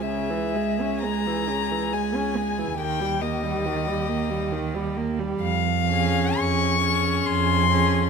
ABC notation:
X:1
M:3/4
L:1/16
Q:1/4=68
K:Dblyd
V:1 name="Violin"
_f4 b4 a4 | g2 e8 z2 | f4 d'4 c'4 |]
V:2 name="Violin"
A12 | G12 | z2 A4 A4 A2 |]
V:3 name="Viola" clef=bass
D, _F, A, D A, F, D, F, A, D A, F, | E, G, B, G, E, G, B, G, E, G, B, G, | z2 D4 D4 D2 |]
V:4 name="Cello" clef=bass
D,,12 | E,,12 | F,,4 F,,4 F,,4 |]